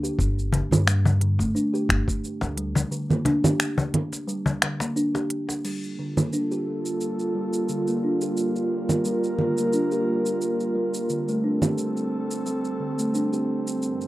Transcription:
0.03 kalimba G4, shaker
0.19 upright bass G1, kick, shaker
0.39 shaker
0.52 cajon bass, closed hi-hat
0.71 upright bass G2, low conga, shaker
0.87 kalimba G3, finger snap, shaker
1.05 cajon bass, shaker
1.21 kalimba D3, closed hi-hat
1.39 upright bass G1, kalimba A3, kick, cajon slap, shaker
1.55 kalimba D4, shaker
1.74 kalimba G4, shaker
1.89 upright bass G1, finger snap, kick, closed hi-hat
2.08 kick, shaker
2.24 shaker
2.41 upright bass D2, cajon slap, shaker
2.57 kalimba G3, closed hi-hat
2.75 cajon bass, cajon slap, shaker
2.91 kalimba D3, shaker
3.10 kalimba A#3, low conga, shaker
3.25 kalimba D4, cajon bass, closed hi-hat
3.44 kalimba G4, low conga, shaker
3.60 finger snap, shaker
3.78 cajon bass, shaker
3.94 closed hi-hat, low conga
4.13 cajon slap, shaker
4.28 kalimba G3, shaker
4.46 cajon bass, shaker
4.62 kalimba D3, finger snap, cajon slap, closed hi-hat
4.80 kalimba A#3, cajon slap, shaker
4.96 kalimba D4, shaker
5.15 kalimba G4, cajon slap, shaker
5.30 closed hi-hat
5.49 cajon slap, shaker
5.64 analog synth pad G3 A#3 F4 A4, kalimba G3, crash, shaker
5.83 shaker
5.99 kalimba D3
6.17 kalimba A#3, low conga, shaker
6.33 kalimba D4, shaker
6.51 kalimba G4, shaker
6.86 shaker
7.01 shaker
7.19 shaker
7.35 kalimba G3
7.53 shaker
7.69 kalimba D3, shaker
7.87 kalimba A#3, shaker
8.04 kalimba D4
8.21 kalimba G4, shaker
8.37 analog synth pad A#4, shaker
8.56 shaker
8.89 low conga, shaker
9.05 kalimba G3, shaker
9.24 shaker
9.39 kalimba D3, low conga
9.58 kalimba A#3, shaker
9.73 kalimba D4, shaker
9.91 kalimba G4, shaker
10.26 shaker
10.41 shaker
10.60 shaker
10.75 kalimba G3
10.94 shaker
11.09 kalimba D3, analog synth pad C4 A4, shaker
11.28 kalimba A3, shaker
11.44 kalimba D4
11.62 kalimba G4, low conga, shaker
11.78 shaker
11.97 shaker
12.31 shaker
12.46 kalimba G3, shaker
12.65 shaker
12.80 kalimba D3
12.99 kalimba A3, shaker
13.14 kalimba D4, shaker
13.32 kalimba G4, shaker
13.67 shaker
13.82 analog synth pad G2 E3 A#4, shaker
14.01 shaker

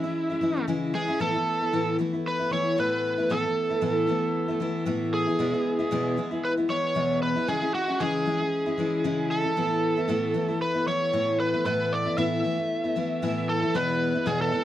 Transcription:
Already playing: electric slide guitar E4
0.04 steel-string acoustic guitar G#3 C#4 E4
0.30 steel-string acoustic guitar G#3 C#4 E4
0.41 steel-string acoustic guitar E3 G#3 C#4 E4
0.55 steel-string acoustic guitar G#3 C#4 E4
0.68 steel-string acoustic guitar C#3 E3 G#3 C#4 E4
0.94 steel-string acoustic guitar E3 G#3 C#4 E4, electric slide guitar G#4
1.08 steel-string acoustic guitar G#3 C#4 E4
1.20 steel-string acoustic guitar A2 E3 A3 B3 E4, electric slide guitar A4
1.34 steel-string acoustic guitar A3 B3 E4
1.61 steel-string acoustic guitar A3 B3 E4
1.73 steel-string acoustic guitar A2 E3 A3 B3 E4
1.99 steel-string acoustic guitar E3 A3 B3 E4
2.13 steel-string acoustic guitar A3 B3 E4
2.27 electric slide guitar B4
2.39 steel-string acoustic guitar A3 B3 E4
2.51 steel-string acoustic guitar E3 A3 B3 E4, electric slide guitar C#5
2.77 steel-string acoustic guitar A2 E3 A3 B3 E4, electric slide guitar B4
3.18 steel-string acoustic guitar A3 B3 E4
3.30 steel-string acoustic guitar A2 E3 A3 B3 E4, electric slide guitar A4
3.44 steel-string acoustic guitar A3 B3 E4
3.70 steel-string acoustic guitar A3 B3 E4
3.81 steel-string acoustic guitar A2 E3 A3 B3 E4
4.07 steel-string acoustic guitar E3 A3 B3 E4
4.48 steel-string acoustic guitar A3 B3 E4
4.60 steel-string acoustic guitar E3 A3 B3 E4
4.86 steel-string acoustic guitar A2 E3 A3 B3 E4
5.14 electric slide guitar G#4
5.27 steel-string acoustic guitar A3 B3 E4
5.39 steel-string acoustic guitar E2 B2 E3 G#3 B3 E4
5.53 steel-string acoustic guitar E3 G#3 B3 E4
5.79 steel-string acoustic guitar E3 G#3 B3 E4
5.91 steel-string acoustic guitar E2 B2 E3 G#3 B3 E4
6.17 steel-string acoustic guitar E3 G#3 B3 E4
6.31 steel-string acoustic guitar E3 G#3 B3 E4
6.45 electric slide guitar B4
6.57 steel-string acoustic guitar E3 G#3 B3 E4
6.69 steel-string acoustic guitar E3 G#3 B3 E4, electric slide guitar C#5
6.95 steel-string acoustic guitar E2 B2 E3 G#3 B3 E4
7.23 electric slide guitar B4
7.35 steel-string acoustic guitar E3 G#3 B3 E4
7.47 steel-string acoustic guitar C#3 E3 G#3 C#4 E4, electric slide guitar G#4
7.62 steel-string acoustic guitar G#3 C#4 E4
7.74 electric slide guitar F#4
7.88 steel-string acoustic guitar G#3 C#4 E4
8.00 steel-string acoustic guitar C#3 E3 G#3 C#4 E4, electric slide guitar G#4
8.26 steel-string acoustic guitar E3 G#3 C#4 E4
8.40 steel-string acoustic guitar G#3 C#4 E4
8.66 steel-string acoustic guitar G#3 C#4 E4
8.78 steel-string acoustic guitar E3 G#3 C#4 E4
9.04 steel-string acoustic guitar C#3 E3 G#3 C#4 E4
9.31 electric slide guitar A4
9.44 steel-string acoustic guitar G#3 C#4 E4
9.56 steel-string acoustic guitar A2 E3 A3 B3 E4
9.97 steel-string acoustic guitar A3 B3 E4
10.08 steel-string acoustic guitar A2 E3 A3 B3 E4
10.34 steel-string acoustic guitar E3 A3 B3 E4
10.48 steel-string acoustic guitar A3 B3 E4
10.62 electric slide guitar B4
10.74 steel-string acoustic guitar A3 B3 E4
10.86 steel-string acoustic guitar E3 A3 B3 E4, electric slide guitar C#5
11.13 steel-string acoustic guitar A2 E3 A3 B3 E4
11.40 electric slide guitar B4
11.53 steel-string acoustic guitar A3 B3 E4
11.65 steel-string acoustic guitar A2 E3 A3 B3 E4, electric slide guitar B4
11.93 electric slide guitar D5
12.05 steel-string acoustic guitar A3 B3 E4
12.17 steel-string acoustic guitar A2 E3 A3 B3 E4, electric slide guitar E5
12.43 steel-string acoustic guitar E3 A3 B3 E4
12.58 steel-string acoustic guitar A3 B3 E4
12.84 steel-string acoustic guitar A3 B3 E4
12.96 steel-string acoustic guitar E3 A3 B3 E4
13.22 steel-string acoustic guitar A2 E3 A3 B3 E4
13.49 electric slide guitar A4
13.62 steel-string acoustic guitar A3 B3 E4
13.74 steel-string acoustic guitar E2 B2 E3 G#3 B3 E4, electric slide guitar B4
14.14 steel-string acoustic guitar E3 G#3 B3 E4
14.26 steel-string acoustic guitar E2 B2 E3 G#3 B3 E4, electric slide guitar G#4
14.41 electric slide guitar A4
14.52 steel-string acoustic guitar E3 G#3 B3 E4

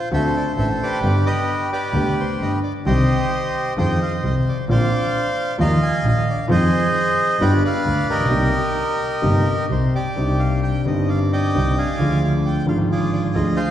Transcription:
0.11 double bass D2, grand piano D2 D3 A3 C4 F#4, bandoneon A4 C5 E5
0.37 bandoneon D5
0.56 double bass A1, grand piano A1 A2, bandoneon E5
0.83 bandoneon G4 B4 D5
1.01 double bass G1, grand piano G1 G2 D3 G3 B3 G4
1.26 bandoneon G4 B4 D#5
1.72 bandoneon G4 B4 D5
1.92 double bass D2, grand piano D2 D3 G3 B3 G4
2.20 bandoneon C5
2.39 double bass G1, grand piano G1 G2, bandoneon D#5
2.63 bandoneon D5
2.86 double bass C2, grand piano C2 C3 D#3 G3 C4 G4, bandoneon G4 C5 D#5
3.76 double bass F2, grand piano F2 D#3 F3 G#3 C4 F4, bandoneon C5 D#5 G5
4.02 bandoneon F5
4.23 grand piano C2 C3, double bass C2, bandoneon D#5
4.48 bandoneon D5
4.68 double bass A#1, grand piano A#1 A#2 D3 A#3 C4 F4, bandoneon C5 D5 F5
5.58 grand piano D#2 D#3 F3 A#3 F4, double bass D#2, bandoneon D#5 F5 A#5
5.83 bandoneon G#5
6.03 double bass A#1, grand piano A#1 A#2
6.08 bandoneon D#5
6.30 bandoneon D5
6.48 double bass F2, grand piano F2 D#3 F3 G#3 C4 F4, bandoneon G#4 C5
6.53 bandoneon D#5
7.39 double bass G1, grand piano G1 G2 D3 G3 B3 F4, bandoneon B4 D5 G5
7.65 bandoneon B4 D5 F5
7.84 double bass D2, grand piano D2 D3
8.08 double bass A#1, bandoneon G4 A#4
8.12 grand piano A1, bandoneon D#5
8.20 grand piano A#1
8.25 grand piano B1
8.30 grand piano C2 C3 G3 A#3 D#4, double bass C2
9.22 grand piano G1 G2 C3 G3 A#3 D#4, double bass G1
9.69 double bass C2, grand piano C2 C3, bandoneon C5
9.95 bandoneon G4 D5
10.15 double bass C2, grand piano C2 C3 G3 C4 D4 D#4
10.39 bandoneon F5
10.63 bandoneon G5
10.83 double bass G1, grand piano G1 G2 G3 C4 D4, bandoneon D#5
10.88 grand piano D#4
11.09 bandoneon D5 F5
11.32 bandoneon D5 D#5 G5
11.53 double bass C2, grand piano C2 C3 D3 G3 C4 D#4
11.77 bandoneon D5 F5 G#5
11.98 double bass D2, grand piano D2 D3 F3 G#3 F4
12.24 bandoneon F5
12.46 bandoneon G5
12.65 double bass G#1, grand piano G#1 G#2 D3 F3 G#3 F4, bandoneon F5
12.92 bandoneon F4 G#4 D5
13.12 bandoneon D5
13.34 double bass D2, grand piano D2 D3 F3 G#3 F4, bandoneon D#5
13.56 bandoneon G#4 C5 F5

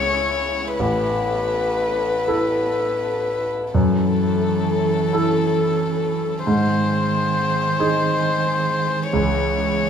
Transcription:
Already playing: grand piano C#2 E4 G#4, string section C#4 E4 G#4, violin C#5
0.78 grand piano A1, string section B3 A4, violin B4
2.28 grand piano E4 A4
3.74 grand piano F#2, cello E3, string section C#4 E4 A4, violin A4
5.13 grand piano E4 A4
6.45 grand piano G#2, cello D#3, string section C4 D#4 G#4, violin C5
7.80 grand piano D#4 G#4
9.13 grand piano C#2, cello E3, string section C#4 E4, violin C#5

